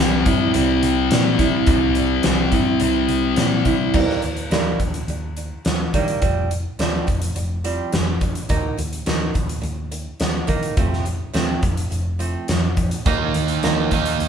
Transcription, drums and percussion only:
0.26 kick medium
0.26 closed hi-hat medium
0.54 closed hi-hat medium
0.83 closed hi-hat medium
1.11 snare loud
1.11 closed hi-hat medium
1.39 kick medium
1.39 closed hi-hat medium
1.67 kick loud
1.67 closed hi-hat medium
1.95 closed hi-hat medium
2.23 snare loud
2.23 closed hi-hat medium
2.52 kick medium
2.52 closed hi-hat medium
2.80 closed hi-hat medium
3.09 closed hi-hat medium
3.36 snare medium
3.36 closed hi-hat medium
3.65 kick medium
3.65 closed hi-hat medium
3.94 kick medium
3.94 crash medium
4.10 snare soft
4.22 closed hi-hat medium
4.37 closed hi-hat soft
4.51 snare medium
4.51 closed hi-hat soft
4.80 kick medium
4.80 closed hi-hat medium
4.94 closed hi-hat soft
5.08 closed hi-hat soft
5.37 closed hi-hat soft
5.65 snare loud
5.65 closed hi-hat medium
5.94 kick medium
5.94 closed hi-hat medium
6.08 closed hi-hat soft
6.22 kick medium
6.22 closed hi-hat medium
6.51 closed hi-hat medium
6.79 snare medium
6.79 closed hi-hat medium
7.08 kick medium
7.08 closed hi-hat medium
7.22 closed hi-hat medium
7.36 closed hi-hat medium
7.65 closed hi-hat soft
7.93 snare loud
7.93 closed hi-hat medium
8.21 kick medium
8.21 closed hi-hat medium
8.35 closed hi-hat medium
8.49 kick medium
8.49 closed hi-hat medium
8.79 closed hi-hat medium
8.93 closed hi-hat soft
9.06 snare medium
9.06 closed hi-hat soft
9.35 kick medium
9.35 closed hi-hat soft
9.49 closed hi-hat medium
9.63 closed hi-hat soft
9.92 closed hi-hat medium
10.20 snare loud
10.20 closed hi-hat medium
10.48 kick medium
10.48 closed hi-hat soft
10.63 closed hi-hat soft
10.77 kick loud
10.77 closed hi-hat medium
10.93 snare soft
11.06 closed hi-hat soft
11.34 snare medium
11.34 closed hi-hat soft
11.63 kick medium
11.63 closed hi-hat medium
11.77 closed hi-hat medium
11.92 closed hi-hat medium
12.20 closed hi-hat soft
12.48 snare medium
12.48 closed hi-hat medium
12.77 kick medium
12.77 closed hi-hat medium
12.91 closed hi-hat medium
13.06 kick loud
13.06 closed hi-hat medium
13.34 closed hi-hat medium
13.48 closed hi-hat soft
13.63 snare medium
13.63 closed hi-hat medium
13.91 kick medium
13.91 closed hi-hat medium
14.06 closed hi-hat medium
14.20 closed hi-hat soft

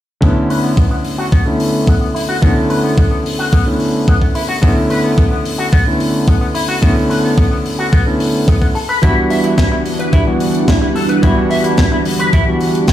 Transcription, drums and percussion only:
0.22 kick loud
0.50 open hi-hat medium
0.77 kick loud
1.04 open hi-hat medium
1.32 kick medium
1.60 open hi-hat loud
1.87 kick loud
2.16 open hi-hat loud
2.43 kick loud
2.70 open hi-hat medium
2.98 kick loud
3.26 open hi-hat loud
3.53 kick loud
3.80 open hi-hat medium
4.08 kick loud
4.22 kick medium
4.35 open hi-hat loud
4.63 kick loud
4.90 open hi-hat loud
5.18 kick loud
5.45 open hi-hat loud
5.73 kick loud
6.00 open hi-hat loud
6.28 kick loud
6.55 open hi-hat loud
6.83 kick loud
7.11 open hi-hat loud
7.38 kick loud
7.66 open hi-hat medium
7.93 kick loud
8.20 open hi-hat loud
8.48 kick loud
8.62 kick medium
8.75 open hi-hat loud
9.03 kick loud
9.03 closed hi-hat medium
9.30 open hi-hat medium
9.44 closed hi-hat medium
9.58 kick loud
9.58 snare loud
9.58 closed hi-hat medium
9.86 open hi-hat loud
10.00 closed hi-hat medium
10.13 kick loud
10.13 closed hi-hat medium
10.40 open hi-hat loud
10.55 closed hi-hat medium
10.68 kick loud
10.68 snare loud
10.68 closed hi-hat medium
10.96 open hi-hat loud
11.09 closed hi-hat medium
11.23 kick loud
11.23 closed hi-hat medium
11.51 open hi-hat loud
11.64 closed hi-hat medium
11.78 kick loud
11.78 snare medium
11.78 closed hi-hat medium
12.05 open hi-hat loud
12.20 closed hi-hat medium
12.33 kick loud
12.33 closed hi-hat medium
12.61 open hi-hat loud
12.75 closed hi-hat medium
12.88 kick loud
12.88 snare loud
12.88 closed hi-hat medium

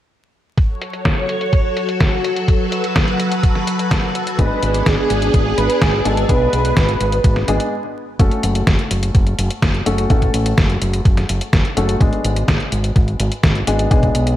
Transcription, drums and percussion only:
0.57 kick loud
0.57 closed hi-hat medium
0.81 closed hi-hat medium
0.93 closed hi-hat soft
1.05 kick loud
1.05 snare loud
1.05 closed hi-hat medium
1.29 closed hi-hat medium
1.41 closed hi-hat soft
1.53 kick loud
1.53 closed hi-hat medium
1.77 closed hi-hat medium
1.89 closed hi-hat soft
2.00 kick loud
2.00 snare loud
2.00 closed hi-hat medium
2.24 closed hi-hat medium
2.36 closed hi-hat soft
2.48 kick loud
2.48 closed hi-hat medium
2.72 closed hi-hat medium
2.84 closed hi-hat soft
2.96 kick loud
2.96 snare loud
2.96 closed hi-hat medium
3.08 closed hi-hat soft
3.20 closed hi-hat medium
3.32 closed hi-hat soft
3.43 kick loud
3.43 closed hi-hat medium
3.55 snare soft
3.67 closed hi-hat medium
3.79 closed hi-hat soft
3.91 kick loud
3.91 snare loud
3.91 closed hi-hat medium
4.15 closed hi-hat medium
4.27 closed hi-hat soft
4.39 kick loud
4.39 closed hi-hat medium
4.63 closed hi-hat medium
4.74 closed hi-hat soft
4.86 kick loud
4.86 snare loud
4.86 closed hi-hat medium
5.10 closed hi-hat medium
5.22 closed hi-hat soft
5.34 kick loud
5.34 closed hi-hat medium
5.58 closed hi-hat medium
5.70 closed hi-hat soft
5.82 kick loud
5.82 snare loud
5.82 closed hi-hat medium
6.05 closed hi-hat medium
6.17 closed hi-hat soft
6.29 kick loud
6.29 closed hi-hat medium
6.53 closed hi-hat medium
6.65 closed hi-hat soft
6.77 kick loud
6.77 snare loud
6.77 closed hi-hat medium
6.89 closed hi-hat soft
7.01 closed hi-hat medium
7.12 closed hi-hat soft
7.24 kick loud
7.24 closed hi-hat medium
7.36 snare soft
7.48 closed hi-hat medium
7.60 closed hi-hat soft
8.19 kick loud
8.19 closed hi-hat medium
8.31 closed hi-hat soft
8.43 closed hi-hat medium
8.55 closed hi-hat medium
8.67 kick loud
8.67 snare loud
8.67 closed hi-hat medium
8.79 closed hi-hat soft
8.91 closed hi-hat medium
9.03 closed hi-hat medium
9.15 kick loud
9.15 closed hi-hat medium
9.27 closed hi-hat soft
9.39 closed hi-hat medium
9.50 closed hi-hat medium
9.62 kick loud
9.62 snare loud
9.62 closed hi-hat medium
9.74 closed hi-hat soft
9.86 closed hi-hat medium
9.98 closed hi-hat medium
10.10 kick loud
10.10 closed hi-hat soft
10.22 kick medium
10.22 closed hi-hat soft
10.34 closed hi-hat medium
10.46 closed hi-hat medium
10.58 kick loud
10.58 snare loud
10.58 closed hi-hat medium
10.70 closed hi-hat soft
10.82 closed hi-hat medium
10.94 closed hi-hat medium
11.05 kick loud
11.05 closed hi-hat soft
11.17 snare soft
11.17 closed hi-hat soft
11.29 closed hi-hat medium
11.41 closed hi-hat medium
11.53 kick loud
11.53 snare loud
11.53 closed hi-hat medium
11.65 closed hi-hat soft
11.77 closed hi-hat medium
11.89 closed hi-hat medium
12.01 kick loud
12.01 closed hi-hat soft
12.13 closed hi-hat soft
12.25 closed hi-hat medium
12.36 closed hi-hat soft
12.48 kick loud
12.48 snare loud
12.48 closed hi-hat soft
12.60 closed hi-hat soft
12.72 closed hi-hat medium
12.84 closed hi-hat medium
12.96 kick loud
12.96 closed hi-hat soft
13.08 closed hi-hat soft
13.20 closed hi-hat medium
13.32 closed hi-hat soft
13.43 kick loud
13.43 snare loud
13.43 closed hi-hat soft
13.55 closed hi-hat soft
13.67 closed hi-hat medium
13.79 closed hi-hat soft
13.91 kick loud
13.91 closed hi-hat soft
14.03 kick medium
14.03 closed hi-hat soft
14.15 closed hi-hat medium
14.27 closed hi-hat soft

